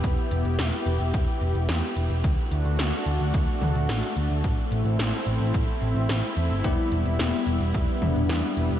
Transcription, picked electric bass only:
X:1
M:4/4
L:1/16
Q:1/4=109
K:Em
V:1 name="Picked electric bass" clef=bass
z2 E,,, E,,, E,,, z E,,, E,,, E,,, z E,,, E,,, E,, z E,,, E,,, | D,, z D,, D,, D,, z D,, D,, D,, z D,, D,, A,,, z D,, D,, | A,,, z A,,, A,,, A,,, z A,,, A,,, A,,, z A,,, A,,, A,,, z E,, G,,, | E,,, z E,,, E,,, E,,, z E,,, E,,, E,,, z E,,, E,,, E,, z E,,, E,,, |]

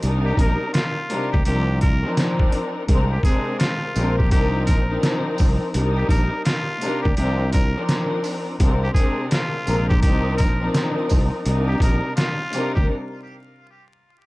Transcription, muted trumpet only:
X:1
M:4/4
L:1/16
Q:"Swing 16ths" 1/4=84
K:Cm
V:1 name="Muted trumpet"
z G B2 F3 G G2 B2 z4 | z G A2 F3 G G2 B2 z4 | z G B2 F3 G G2 B2 z4 | z G A2 F3 G G2 B2 z4 |
z G B2 F3 G z8 |]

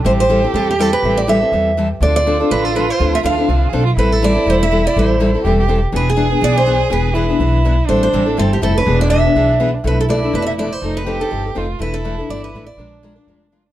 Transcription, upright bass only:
X:1
M:4/4
L:1/8
Q:"Swing" 1/4=245
K:Am
V:1 name="Upright bass" clef=bass
A,,,4 E,,4 | A,,,4 E,,4 | D,,4 A,,,4 | D,,2 D,,2 C,,2 B,,,2 |
A,,,4 E,,,4 | A,,,4 E,,,4 | E,,,4 B,,,4 | E,,,4 B,,,4 |
A,,,2 A,,,2 G,,,2 F,,,2 | E,,,4 B,,,4 | B,,,4 F,,,4 | F,,,4 G,,,2 F,,,2 |
E,,,4 G,,,2 A,,,2 | _B,,,4 F,,,4 |]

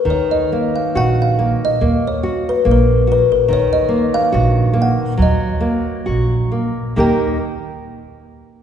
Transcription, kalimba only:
X:1
M:2/4
L:1/16
Q:1/4=70
K:Ebm
V:1 name="Kalimba"
d e2 f g f2 e- | e d2 c B2 c B | d e2 f3 g2 | e6 z2 |
=g2 z6 |]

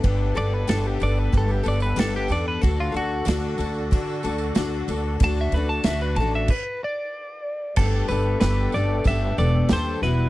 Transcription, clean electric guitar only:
X:1
M:4/4
L:1/16
Q:1/4=93
K:G
V:1 name="Clean electric guitar"
z2 d B A G d B A G d B A G d B | A =F ^F2 z12 | a e B a e B a e B2 d6 | A2 B2 B2 d2 e2 d2 c2 B2 |]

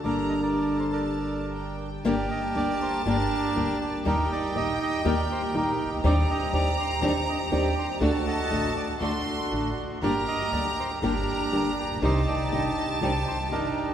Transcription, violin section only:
X:1
M:4/4
L:1/8
Q:1/4=120
K:Gm
V:1 name="Violin section"
b2 a4 g2 | a8 | g8 | b8 |
a4 c'3 z | b4 b4 | a8 |]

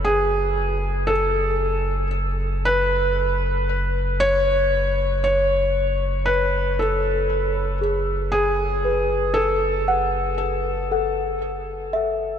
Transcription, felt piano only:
X:1
M:4/4
L:1/8
Q:1/4=58
K:F#m
V:1 name="Felt piano"
G2 A2 z B3 | c2 c2 B A2 z | G2 A2 z4 |]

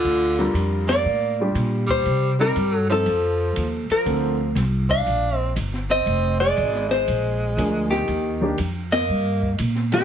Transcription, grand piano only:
X:1
M:4/4
L:1/8
Q:"Swing" 1/4=119
K:Gm
V:1 name="Grand piano"
z [G,DFB]3 z [G,DFG]3 | z [G,CEB] z [F,CEc] z4 | [D,B,CA] z6 z | z6 [F,B,D_A]2 |
z [E,B,DG] z4 z [E,A,CG] |]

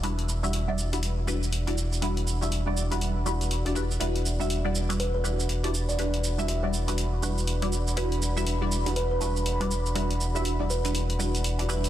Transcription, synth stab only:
X:1
M:4/4
L:1/16
Q:"Swing 16ths" 1/4=121
K:Em
V:1 name="Synth stab"
[G,DEFB]3 [G,DEFe]2 [G,DEFd]2 [G,DEFB]3 [G,DEFB]3 [G,DEFd] z2 | [G,DEFB]3 [G,DEFe]2 [G,DEFd]2 [G,DEFB]3 [G,DEFB]3 [G,DEFd] [G,DEFB] z | [G,DEFB]3 [G,DEFe]2 [G,DEFd]2 [G,DEFB]3 [G,DEFB]3 [G,DEFd] z2 | [G,DEFB]3 [G,DEFe]2 [G,DEFd]2 [G,DEFB]3 [G,DEFB]3 [G,DEFd] z2 |
[G,DEFB]3 [G,DEFe]2 [G,DEFd]2 [G,DEFB]3 [G,DEFB]3 [G,DEFd] z2 | [G,DEFB]3 [G,DEFe]2 [G,DEFd]2 [G,DEFB]3 [G,DEFB]3 [G,DEFd] [G,DEFB] z |]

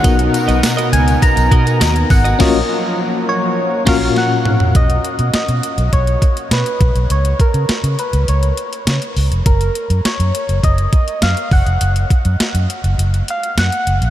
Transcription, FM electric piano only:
X:1
M:4/4
L:1/8
Q:1/4=102
K:Gb
V:1 name="FM electric piano"
[CEGB]8 | [B,,DFGB] z4 [B,,DFGB] z2 | z8 | z8 |
z8 | z8 |]
V:2 name="FM electric piano" clef=bass
C,3 z4 z | z8 | z8 | z8 |
z8 | z8 |]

